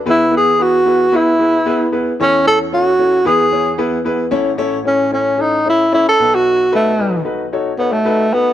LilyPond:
<<
  \new Staff \with { instrumentName = "Upright piano" } { \time 4/4 \key a \major \tempo 4 = 113 <b e' gis' b'>8 <b e' gis' b'>8 <b e' gis' b'>8 <b e' gis' b'>8 <b e' gis' b'>8 <b e' gis' b'>8 <b e' gis' b'>8 <b e' gis' b'>8 | <cis' e' a' cis''>8 <cis' e' a' cis''>8 <cis' e' a' cis''>8 <cis' e' a' cis''>8 <b e' gis' b'>8 <b e' gis' cis''>8 <b e' gis' b'>8 <b e' gis' b'>8 | <cis' e' a' cis''>8 <cis' e' a' cis''>8 <cis' e' a' cis''>8 <cis' e' a' cis''>8 <cis' e' a' cis''>8 <cis' e' a' cis''>8 <cis' e' a' cis''>8 <dis' fis' a' b'>8~ | <dis' fis' a' b'>8 <dis' fis' a' b'>8 <dis' fis' a' b'>8 <dis' fis' a' b'>8 <dis' fis' a' cis''>8 <dis' fis' a' cis''>8 <dis' fis' a' b'>8 <dis' fis' a' b'>8 | }
  \new Staff \with { instrumentName = "Upright piano" } { \clef bass \time 4/4 \key a \major <e, e>1 | <e, e>2 <e, e>2 | <a,, a,>2.~ <a,, a,>8 <b,, b,>8~ | <b,, b,>2.~ <b,, b,>8 r8 | }
  \new Staff \with { instrumentName = "Tenor saxophone" } { \time 4/4 \key a \major e'8 gis'8 fis'4 e'4. r8 | cis'8 a'8 fis'4 gis'4 r4 | r4 cis'8 cis'8 dis'8 e'8 e'16 a'8 fis'16~ | fis'8 a4 r4 b16 a8. b8 | }
>>